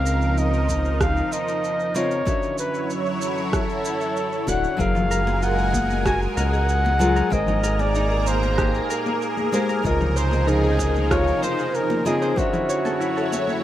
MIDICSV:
0, 0, Header, 1, 8, 480
1, 0, Start_track
1, 0, Tempo, 631579
1, 1725, Time_signature, 4, 2, 24, 8
1, 10363, End_track
2, 0, Start_track
2, 0, Title_t, "Synth texture"
2, 0, Program_c, 0, 99
2, 3642, Note_on_c, 0, 80, 84
2, 3644, Note_on_c, 0, 68, 90
2, 10363, Note_off_c, 0, 68, 0
2, 10363, Note_off_c, 0, 80, 0
2, 10363, End_track
3, 0, Start_track
3, 0, Title_t, "Flugelhorn"
3, 0, Program_c, 1, 56
3, 0, Note_on_c, 1, 77, 107
3, 295, Note_on_c, 1, 75, 106
3, 306, Note_off_c, 1, 77, 0
3, 770, Note_off_c, 1, 75, 0
3, 774, Note_on_c, 1, 77, 103
3, 1009, Note_on_c, 1, 75, 111
3, 1020, Note_off_c, 1, 77, 0
3, 1487, Note_on_c, 1, 73, 107
3, 1499, Note_off_c, 1, 75, 0
3, 1966, Note_off_c, 1, 73, 0
3, 1970, Note_on_c, 1, 71, 103
3, 2223, Note_off_c, 1, 71, 0
3, 2449, Note_on_c, 1, 69, 108
3, 3411, Note_on_c, 1, 78, 100
3, 3423, Note_off_c, 1, 69, 0
3, 3652, Note_on_c, 1, 77, 105
3, 3664, Note_off_c, 1, 78, 0
3, 4132, Note_on_c, 1, 78, 110
3, 4144, Note_off_c, 1, 77, 0
3, 4606, Note_off_c, 1, 78, 0
3, 4611, Note_on_c, 1, 80, 106
3, 4718, Note_off_c, 1, 80, 0
3, 4849, Note_on_c, 1, 78, 121
3, 5570, Note_on_c, 1, 75, 100
3, 5582, Note_off_c, 1, 78, 0
3, 5931, Note_on_c, 1, 74, 108
3, 5943, Note_off_c, 1, 75, 0
3, 6290, Note_on_c, 1, 72, 98
3, 6301, Note_off_c, 1, 74, 0
3, 6767, Note_off_c, 1, 72, 0
3, 7013, Note_on_c, 1, 68, 90
3, 7459, Note_off_c, 1, 68, 0
3, 7493, Note_on_c, 1, 70, 105
3, 7731, Note_on_c, 1, 72, 109
3, 7743, Note_off_c, 1, 70, 0
3, 7967, Note_on_c, 1, 68, 102
3, 7979, Note_off_c, 1, 72, 0
3, 8450, Note_on_c, 1, 73, 112
3, 8462, Note_off_c, 1, 68, 0
3, 8690, Note_on_c, 1, 72, 112
3, 8702, Note_off_c, 1, 73, 0
3, 8930, Note_on_c, 1, 70, 104
3, 8941, Note_off_c, 1, 72, 0
3, 9165, Note_off_c, 1, 70, 0
3, 9170, Note_on_c, 1, 68, 105
3, 9407, Note_on_c, 1, 66, 98
3, 9419, Note_off_c, 1, 68, 0
3, 10363, Note_off_c, 1, 66, 0
3, 10363, End_track
4, 0, Start_track
4, 0, Title_t, "Harp"
4, 0, Program_c, 2, 46
4, 3762, Note_on_c, 2, 65, 75
4, 3882, Note_on_c, 2, 70, 104
4, 4003, Note_on_c, 2, 68, 68
4, 4119, Note_off_c, 2, 65, 0
4, 4122, Note_on_c, 2, 65, 96
4, 4240, Note_off_c, 2, 68, 0
4, 4243, Note_on_c, 2, 68, 74
4, 4600, Note_on_c, 2, 66, 100
4, 4646, Note_off_c, 2, 65, 0
4, 4837, Note_off_c, 2, 70, 0
4, 4840, Note_on_c, 2, 70, 101
4, 4960, Note_off_c, 2, 68, 0
4, 4963, Note_on_c, 2, 68, 75
4, 5319, Note_off_c, 2, 68, 0
4, 5322, Note_on_c, 2, 68, 75
4, 5439, Note_off_c, 2, 70, 0
4, 5442, Note_on_c, 2, 70, 94
4, 5683, Note_on_c, 2, 63, 81
4, 5798, Note_off_c, 2, 70, 0
4, 5801, Note_on_c, 2, 70, 103
4, 5920, Note_off_c, 2, 68, 0
4, 5923, Note_on_c, 2, 68, 71
4, 6042, Note_off_c, 2, 63, 0
4, 6045, Note_on_c, 2, 63, 105
4, 6163, Note_off_c, 2, 68, 0
4, 6166, Note_on_c, 2, 68, 75
4, 6452, Note_off_c, 2, 66, 0
4, 6526, Note_on_c, 2, 67, 101
4, 6572, Note_off_c, 2, 68, 0
4, 6762, Note_off_c, 2, 70, 0
4, 6765, Note_on_c, 2, 70, 102
4, 6886, Note_on_c, 2, 68, 71
4, 6932, Note_off_c, 2, 67, 0
4, 7240, Note_off_c, 2, 68, 0
4, 7243, Note_on_c, 2, 68, 76
4, 7362, Note_off_c, 2, 70, 0
4, 7365, Note_on_c, 2, 70, 94
4, 7601, Note_off_c, 2, 63, 0
4, 7604, Note_on_c, 2, 63, 77
4, 7721, Note_on_c, 2, 72, 100
4, 7837, Note_off_c, 2, 68, 0
4, 7841, Note_on_c, 2, 68, 76
4, 7957, Note_off_c, 2, 63, 0
4, 7960, Note_on_c, 2, 63, 101
4, 8078, Note_off_c, 2, 68, 0
4, 8081, Note_on_c, 2, 68, 82
4, 8440, Note_on_c, 2, 65, 110
4, 8678, Note_off_c, 2, 72, 0
4, 8681, Note_on_c, 2, 72, 111
4, 8802, Note_off_c, 2, 68, 0
4, 8805, Note_on_c, 2, 68, 77
4, 8977, Note_off_c, 2, 70, 0
4, 9161, Note_off_c, 2, 68, 0
4, 9164, Note_on_c, 2, 68, 77
4, 9281, Note_off_c, 2, 72, 0
4, 9284, Note_on_c, 2, 72, 96
4, 9522, Note_on_c, 2, 64, 78
4, 9567, Note_off_c, 2, 63, 0
4, 9567, Note_off_c, 2, 65, 0
4, 9643, Note_on_c, 2, 73, 109
4, 9689, Note_off_c, 2, 72, 0
4, 9766, Note_on_c, 2, 69, 72
4, 9812, Note_off_c, 2, 68, 0
4, 9880, Note_off_c, 2, 64, 0
4, 9883, Note_on_c, 2, 64, 107
4, 10001, Note_off_c, 2, 69, 0
4, 10004, Note_on_c, 2, 69, 80
4, 10363, Note_off_c, 2, 64, 0
4, 10363, Note_off_c, 2, 69, 0
4, 10363, Note_off_c, 2, 73, 0
4, 10363, End_track
5, 0, Start_track
5, 0, Title_t, "Nylon-string guitar"
5, 0, Program_c, 3, 24
5, 0, Note_on_c, 3, 49, 84
5, 0, Note_on_c, 3, 60, 84
5, 0, Note_on_c, 3, 65, 81
5, 0, Note_on_c, 3, 75, 94
5, 1449, Note_off_c, 3, 49, 0
5, 1453, Note_off_c, 3, 60, 0
5, 1456, Note_off_c, 3, 65, 0
5, 1460, Note_off_c, 3, 75, 0
5, 1477, Note_on_c, 3, 49, 95
5, 1482, Note_on_c, 3, 60, 92
5, 1485, Note_on_c, 3, 65, 83
5, 1489, Note_on_c, 3, 75, 111
5, 1693, Note_off_c, 3, 49, 0
5, 1694, Note_off_c, 3, 60, 0
5, 1696, Note_off_c, 3, 65, 0
5, 1698, Note_off_c, 3, 75, 0
5, 1713, Note_on_c, 3, 50, 86
5, 1719, Note_on_c, 3, 61, 85
5, 1727, Note_on_c, 3, 66, 78
5, 1735, Note_on_c, 3, 76, 93
5, 3370, Note_off_c, 3, 50, 0
5, 3373, Note_off_c, 3, 61, 0
5, 3377, Note_off_c, 3, 66, 0
5, 3381, Note_off_c, 3, 76, 0
5, 3396, Note_on_c, 3, 50, 93
5, 3401, Note_on_c, 3, 61, 86
5, 3404, Note_on_c, 3, 66, 88
5, 3407, Note_on_c, 3, 78, 111
5, 3612, Note_off_c, 3, 50, 0
5, 3614, Note_off_c, 3, 61, 0
5, 3616, Note_off_c, 3, 66, 0
5, 3617, Note_off_c, 3, 78, 0
5, 3623, Note_on_c, 3, 54, 90
5, 3631, Note_on_c, 3, 80, 81
5, 3639, Note_on_c, 3, 68, 81
5, 3648, Note_on_c, 3, 70, 98
5, 5285, Note_off_c, 3, 54, 0
5, 5289, Note_off_c, 3, 80, 0
5, 5293, Note_off_c, 3, 68, 0
5, 5298, Note_off_c, 3, 70, 0
5, 5314, Note_on_c, 3, 54, 97
5, 5320, Note_on_c, 3, 65, 88
5, 5323, Note_on_c, 3, 68, 90
5, 5327, Note_on_c, 3, 70, 102
5, 5531, Note_off_c, 3, 54, 0
5, 5534, Note_off_c, 3, 65, 0
5, 5536, Note_off_c, 3, 68, 0
5, 5537, Note_off_c, 3, 70, 0
5, 5550, Note_on_c, 3, 56, 83
5, 5557, Note_on_c, 3, 79, 79
5, 5567, Note_on_c, 3, 70, 83
5, 5573, Note_on_c, 3, 72, 91
5, 7209, Note_off_c, 3, 56, 0
5, 7212, Note_off_c, 3, 79, 0
5, 7217, Note_off_c, 3, 70, 0
5, 7220, Note_off_c, 3, 72, 0
5, 7237, Note_on_c, 3, 56, 101
5, 7243, Note_on_c, 3, 67, 91
5, 7248, Note_on_c, 3, 70, 97
5, 7250, Note_on_c, 3, 72, 108
5, 7452, Note_off_c, 3, 56, 0
5, 7455, Note_off_c, 3, 67, 0
5, 7456, Note_off_c, 3, 70, 0
5, 7459, Note_off_c, 3, 72, 0
5, 7473, Note_on_c, 3, 49, 91
5, 7483, Note_on_c, 3, 48, 83
5, 7489, Note_on_c, 3, 65, 82
5, 7496, Note_on_c, 3, 75, 98
5, 9130, Note_off_c, 3, 49, 0
5, 9135, Note_off_c, 3, 48, 0
5, 9138, Note_off_c, 3, 65, 0
5, 9142, Note_off_c, 3, 75, 0
5, 9159, Note_on_c, 3, 49, 97
5, 9162, Note_on_c, 3, 60, 86
5, 9168, Note_on_c, 3, 65, 87
5, 9170, Note_on_c, 3, 75, 111
5, 9373, Note_off_c, 3, 49, 0
5, 9374, Note_off_c, 3, 60, 0
5, 9378, Note_off_c, 3, 65, 0
5, 9378, Note_off_c, 3, 75, 0
5, 9394, Note_on_c, 3, 50, 84
5, 9404, Note_on_c, 3, 61, 80
5, 9411, Note_on_c, 3, 66, 84
5, 9418, Note_on_c, 3, 76, 93
5, 10363, Note_off_c, 3, 50, 0
5, 10363, Note_off_c, 3, 61, 0
5, 10363, Note_off_c, 3, 66, 0
5, 10363, Note_off_c, 3, 76, 0
5, 10363, End_track
6, 0, Start_track
6, 0, Title_t, "Analog synth pad"
6, 0, Program_c, 4, 89
6, 0, Note_on_c, 4, 53, 85
6, 0, Note_on_c, 4, 63, 77
6, 0, Note_on_c, 4, 70, 95
6, 1693, Note_off_c, 4, 70, 0
6, 1705, Note_off_c, 4, 53, 0
6, 1705, Note_off_c, 4, 63, 0
6, 1726, Note_on_c, 4, 64, 82
6, 1726, Note_on_c, 4, 73, 100
6, 1727, Note_on_c, 4, 54, 88
6, 3626, Note_off_c, 4, 64, 0
6, 3626, Note_off_c, 4, 73, 0
6, 3627, Note_off_c, 4, 54, 0
6, 3644, Note_on_c, 4, 80, 81
6, 3645, Note_on_c, 4, 70, 94
6, 3646, Note_on_c, 4, 56, 84
6, 5545, Note_off_c, 4, 80, 0
6, 5546, Note_off_c, 4, 56, 0
6, 5546, Note_off_c, 4, 70, 0
6, 5563, Note_on_c, 4, 58, 88
6, 5563, Note_on_c, 4, 70, 94
6, 5563, Note_on_c, 4, 82, 81
6, 7464, Note_off_c, 4, 82, 0
6, 7465, Note_off_c, 4, 58, 0
6, 7484, Note_on_c, 4, 53, 85
6, 7485, Note_on_c, 4, 63, 81
6, 9373, Note_off_c, 4, 70, 0
6, 9385, Note_off_c, 4, 53, 0
6, 9386, Note_off_c, 4, 63, 0
6, 9404, Note_on_c, 4, 54, 83
6, 9404, Note_on_c, 4, 73, 99
6, 9405, Note_on_c, 4, 64, 78
6, 10363, Note_off_c, 4, 54, 0
6, 10363, Note_off_c, 4, 64, 0
6, 10363, Note_off_c, 4, 73, 0
6, 10363, End_track
7, 0, Start_track
7, 0, Title_t, "Analog synth bass"
7, 0, Program_c, 5, 38
7, 0, Note_on_c, 5, 37, 93
7, 934, Note_off_c, 5, 37, 0
7, 3403, Note_on_c, 5, 26, 94
7, 3556, Note_off_c, 5, 26, 0
7, 3642, Note_on_c, 5, 30, 96
7, 4773, Note_off_c, 5, 30, 0
7, 4843, Note_on_c, 5, 37, 97
7, 5493, Note_off_c, 5, 37, 0
7, 5564, Note_on_c, 5, 32, 92
7, 6694, Note_off_c, 5, 32, 0
7, 7483, Note_on_c, 5, 37, 99
7, 8613, Note_off_c, 5, 37, 0
7, 10363, End_track
8, 0, Start_track
8, 0, Title_t, "Drums"
8, 47, Note_on_c, 9, 82, 86
8, 123, Note_off_c, 9, 82, 0
8, 166, Note_on_c, 9, 82, 36
8, 242, Note_off_c, 9, 82, 0
8, 286, Note_on_c, 9, 82, 49
8, 362, Note_off_c, 9, 82, 0
8, 408, Note_on_c, 9, 82, 24
8, 484, Note_off_c, 9, 82, 0
8, 525, Note_on_c, 9, 36, 64
8, 526, Note_on_c, 9, 82, 88
8, 601, Note_off_c, 9, 36, 0
8, 602, Note_off_c, 9, 82, 0
8, 647, Note_on_c, 9, 82, 33
8, 723, Note_off_c, 9, 82, 0
8, 764, Note_on_c, 9, 37, 84
8, 765, Note_on_c, 9, 36, 121
8, 767, Note_on_c, 9, 82, 47
8, 840, Note_off_c, 9, 37, 0
8, 841, Note_off_c, 9, 36, 0
8, 843, Note_off_c, 9, 82, 0
8, 888, Note_on_c, 9, 82, 23
8, 964, Note_off_c, 9, 82, 0
8, 1006, Note_on_c, 9, 82, 81
8, 1082, Note_off_c, 9, 82, 0
8, 1128, Note_on_c, 9, 82, 37
8, 1204, Note_off_c, 9, 82, 0
8, 1247, Note_on_c, 9, 82, 46
8, 1323, Note_off_c, 9, 82, 0
8, 1366, Note_on_c, 9, 82, 24
8, 1442, Note_off_c, 9, 82, 0
8, 1484, Note_on_c, 9, 82, 74
8, 1560, Note_off_c, 9, 82, 0
8, 1605, Note_on_c, 9, 82, 33
8, 1681, Note_off_c, 9, 82, 0
8, 1723, Note_on_c, 9, 82, 47
8, 1724, Note_on_c, 9, 36, 122
8, 1799, Note_off_c, 9, 82, 0
8, 1800, Note_off_c, 9, 36, 0
8, 1844, Note_on_c, 9, 82, 25
8, 1920, Note_off_c, 9, 82, 0
8, 1963, Note_on_c, 9, 82, 80
8, 2039, Note_off_c, 9, 82, 0
8, 2085, Note_on_c, 9, 82, 35
8, 2161, Note_off_c, 9, 82, 0
8, 2204, Note_on_c, 9, 82, 49
8, 2280, Note_off_c, 9, 82, 0
8, 2325, Note_on_c, 9, 82, 23
8, 2401, Note_off_c, 9, 82, 0
8, 2444, Note_on_c, 9, 82, 86
8, 2520, Note_off_c, 9, 82, 0
8, 2566, Note_on_c, 9, 82, 34
8, 2642, Note_off_c, 9, 82, 0
8, 2683, Note_on_c, 9, 36, 123
8, 2684, Note_on_c, 9, 37, 75
8, 2686, Note_on_c, 9, 82, 45
8, 2759, Note_off_c, 9, 36, 0
8, 2760, Note_off_c, 9, 37, 0
8, 2762, Note_off_c, 9, 82, 0
8, 2807, Note_on_c, 9, 82, 22
8, 2883, Note_off_c, 9, 82, 0
8, 2926, Note_on_c, 9, 82, 84
8, 3002, Note_off_c, 9, 82, 0
8, 3046, Note_on_c, 9, 82, 34
8, 3122, Note_off_c, 9, 82, 0
8, 3166, Note_on_c, 9, 82, 45
8, 3242, Note_off_c, 9, 82, 0
8, 3286, Note_on_c, 9, 82, 23
8, 3362, Note_off_c, 9, 82, 0
8, 3402, Note_on_c, 9, 36, 59
8, 3406, Note_on_c, 9, 82, 84
8, 3478, Note_off_c, 9, 36, 0
8, 3482, Note_off_c, 9, 82, 0
8, 3528, Note_on_c, 9, 82, 32
8, 3604, Note_off_c, 9, 82, 0
8, 3642, Note_on_c, 9, 36, 108
8, 3646, Note_on_c, 9, 82, 45
8, 3718, Note_off_c, 9, 36, 0
8, 3722, Note_off_c, 9, 82, 0
8, 3763, Note_on_c, 9, 64, 88
8, 3768, Note_on_c, 9, 82, 22
8, 3839, Note_off_c, 9, 64, 0
8, 3844, Note_off_c, 9, 82, 0
8, 3885, Note_on_c, 9, 82, 83
8, 3961, Note_off_c, 9, 82, 0
8, 4006, Note_on_c, 9, 62, 60
8, 4007, Note_on_c, 9, 82, 34
8, 4082, Note_off_c, 9, 62, 0
8, 4083, Note_off_c, 9, 82, 0
8, 4124, Note_on_c, 9, 82, 47
8, 4200, Note_off_c, 9, 82, 0
8, 4245, Note_on_c, 9, 82, 23
8, 4321, Note_off_c, 9, 82, 0
8, 4361, Note_on_c, 9, 36, 58
8, 4364, Note_on_c, 9, 62, 51
8, 4365, Note_on_c, 9, 82, 78
8, 4367, Note_on_c, 9, 63, 62
8, 4437, Note_off_c, 9, 36, 0
8, 4440, Note_off_c, 9, 62, 0
8, 4441, Note_off_c, 9, 82, 0
8, 4443, Note_off_c, 9, 63, 0
8, 4486, Note_on_c, 9, 82, 33
8, 4487, Note_on_c, 9, 63, 69
8, 4562, Note_off_c, 9, 82, 0
8, 4563, Note_off_c, 9, 63, 0
8, 4601, Note_on_c, 9, 36, 108
8, 4602, Note_on_c, 9, 37, 79
8, 4605, Note_on_c, 9, 82, 45
8, 4677, Note_off_c, 9, 36, 0
8, 4678, Note_off_c, 9, 37, 0
8, 4681, Note_off_c, 9, 82, 0
8, 4726, Note_on_c, 9, 82, 23
8, 4802, Note_off_c, 9, 82, 0
8, 4844, Note_on_c, 9, 82, 81
8, 4849, Note_on_c, 9, 62, 33
8, 4920, Note_off_c, 9, 82, 0
8, 4925, Note_off_c, 9, 62, 0
8, 4967, Note_on_c, 9, 82, 35
8, 5043, Note_off_c, 9, 82, 0
8, 5084, Note_on_c, 9, 82, 44
8, 5160, Note_off_c, 9, 82, 0
8, 5204, Note_on_c, 9, 63, 83
8, 5206, Note_on_c, 9, 82, 23
8, 5213, Note_on_c, 9, 62, 64
8, 5280, Note_off_c, 9, 63, 0
8, 5282, Note_off_c, 9, 82, 0
8, 5289, Note_off_c, 9, 62, 0
8, 5325, Note_on_c, 9, 82, 76
8, 5401, Note_off_c, 9, 82, 0
8, 5445, Note_on_c, 9, 82, 33
8, 5521, Note_off_c, 9, 82, 0
8, 5562, Note_on_c, 9, 36, 114
8, 5564, Note_on_c, 9, 82, 44
8, 5638, Note_off_c, 9, 36, 0
8, 5640, Note_off_c, 9, 82, 0
8, 5678, Note_on_c, 9, 64, 86
8, 5685, Note_on_c, 9, 82, 22
8, 5754, Note_off_c, 9, 64, 0
8, 5761, Note_off_c, 9, 82, 0
8, 5805, Note_on_c, 9, 82, 81
8, 5881, Note_off_c, 9, 82, 0
8, 5923, Note_on_c, 9, 62, 66
8, 5924, Note_on_c, 9, 82, 33
8, 5999, Note_off_c, 9, 62, 0
8, 6000, Note_off_c, 9, 82, 0
8, 6042, Note_on_c, 9, 82, 46
8, 6118, Note_off_c, 9, 82, 0
8, 6163, Note_on_c, 9, 82, 22
8, 6239, Note_off_c, 9, 82, 0
8, 6283, Note_on_c, 9, 82, 83
8, 6286, Note_on_c, 9, 63, 54
8, 6359, Note_off_c, 9, 82, 0
8, 6362, Note_off_c, 9, 63, 0
8, 6404, Note_on_c, 9, 82, 34
8, 6405, Note_on_c, 9, 63, 62
8, 6480, Note_off_c, 9, 82, 0
8, 6481, Note_off_c, 9, 63, 0
8, 6521, Note_on_c, 9, 37, 74
8, 6523, Note_on_c, 9, 36, 109
8, 6523, Note_on_c, 9, 82, 42
8, 6597, Note_off_c, 9, 37, 0
8, 6599, Note_off_c, 9, 36, 0
8, 6599, Note_off_c, 9, 82, 0
8, 6644, Note_on_c, 9, 82, 21
8, 6720, Note_off_c, 9, 82, 0
8, 6765, Note_on_c, 9, 82, 76
8, 6841, Note_off_c, 9, 82, 0
8, 6886, Note_on_c, 9, 82, 34
8, 6887, Note_on_c, 9, 62, 59
8, 6962, Note_off_c, 9, 82, 0
8, 6963, Note_off_c, 9, 62, 0
8, 7005, Note_on_c, 9, 82, 42
8, 7081, Note_off_c, 9, 82, 0
8, 7123, Note_on_c, 9, 63, 78
8, 7125, Note_on_c, 9, 82, 23
8, 7199, Note_off_c, 9, 63, 0
8, 7201, Note_off_c, 9, 82, 0
8, 7245, Note_on_c, 9, 82, 70
8, 7321, Note_off_c, 9, 82, 0
8, 7366, Note_on_c, 9, 82, 32
8, 7442, Note_off_c, 9, 82, 0
8, 7483, Note_on_c, 9, 36, 106
8, 7487, Note_on_c, 9, 82, 44
8, 7559, Note_off_c, 9, 36, 0
8, 7563, Note_off_c, 9, 82, 0
8, 7606, Note_on_c, 9, 64, 81
8, 7607, Note_on_c, 9, 82, 22
8, 7682, Note_off_c, 9, 64, 0
8, 7683, Note_off_c, 9, 82, 0
8, 7728, Note_on_c, 9, 82, 74
8, 7804, Note_off_c, 9, 82, 0
8, 7837, Note_on_c, 9, 62, 62
8, 7848, Note_on_c, 9, 82, 32
8, 7913, Note_off_c, 9, 62, 0
8, 7924, Note_off_c, 9, 82, 0
8, 7965, Note_on_c, 9, 82, 47
8, 8041, Note_off_c, 9, 82, 0
8, 8087, Note_on_c, 9, 82, 21
8, 8163, Note_off_c, 9, 82, 0
8, 8199, Note_on_c, 9, 63, 61
8, 8201, Note_on_c, 9, 62, 61
8, 8203, Note_on_c, 9, 36, 54
8, 8207, Note_on_c, 9, 82, 80
8, 8275, Note_off_c, 9, 63, 0
8, 8277, Note_off_c, 9, 62, 0
8, 8279, Note_off_c, 9, 36, 0
8, 8283, Note_off_c, 9, 82, 0
8, 8324, Note_on_c, 9, 63, 54
8, 8328, Note_on_c, 9, 82, 31
8, 8400, Note_off_c, 9, 63, 0
8, 8404, Note_off_c, 9, 82, 0
8, 8444, Note_on_c, 9, 36, 113
8, 8445, Note_on_c, 9, 37, 78
8, 8448, Note_on_c, 9, 82, 42
8, 8520, Note_off_c, 9, 36, 0
8, 8521, Note_off_c, 9, 37, 0
8, 8524, Note_off_c, 9, 82, 0
8, 8569, Note_on_c, 9, 82, 21
8, 8645, Note_off_c, 9, 82, 0
8, 8685, Note_on_c, 9, 62, 41
8, 8687, Note_on_c, 9, 82, 76
8, 8761, Note_off_c, 9, 62, 0
8, 8763, Note_off_c, 9, 82, 0
8, 8807, Note_on_c, 9, 82, 31
8, 8883, Note_off_c, 9, 82, 0
8, 8927, Note_on_c, 9, 82, 44
8, 9003, Note_off_c, 9, 82, 0
8, 9044, Note_on_c, 9, 62, 69
8, 9046, Note_on_c, 9, 63, 77
8, 9047, Note_on_c, 9, 82, 22
8, 9120, Note_off_c, 9, 62, 0
8, 9122, Note_off_c, 9, 63, 0
8, 9123, Note_off_c, 9, 82, 0
8, 9166, Note_on_c, 9, 82, 73
8, 9242, Note_off_c, 9, 82, 0
8, 9290, Note_on_c, 9, 82, 31
8, 9366, Note_off_c, 9, 82, 0
8, 9404, Note_on_c, 9, 36, 114
8, 9409, Note_on_c, 9, 82, 44
8, 9480, Note_off_c, 9, 36, 0
8, 9485, Note_off_c, 9, 82, 0
8, 9526, Note_on_c, 9, 64, 86
8, 9530, Note_on_c, 9, 82, 23
8, 9602, Note_off_c, 9, 64, 0
8, 9606, Note_off_c, 9, 82, 0
8, 9650, Note_on_c, 9, 82, 81
8, 9726, Note_off_c, 9, 82, 0
8, 9767, Note_on_c, 9, 62, 65
8, 9770, Note_on_c, 9, 82, 35
8, 9843, Note_off_c, 9, 62, 0
8, 9846, Note_off_c, 9, 82, 0
8, 9890, Note_on_c, 9, 82, 47
8, 9966, Note_off_c, 9, 82, 0
8, 10010, Note_on_c, 9, 82, 22
8, 10086, Note_off_c, 9, 82, 0
8, 10123, Note_on_c, 9, 63, 59
8, 10127, Note_on_c, 9, 62, 58
8, 10129, Note_on_c, 9, 82, 83
8, 10199, Note_off_c, 9, 63, 0
8, 10203, Note_off_c, 9, 62, 0
8, 10205, Note_off_c, 9, 82, 0
8, 10243, Note_on_c, 9, 63, 66
8, 10250, Note_on_c, 9, 82, 31
8, 10319, Note_off_c, 9, 63, 0
8, 10326, Note_off_c, 9, 82, 0
8, 10363, End_track
0, 0, End_of_file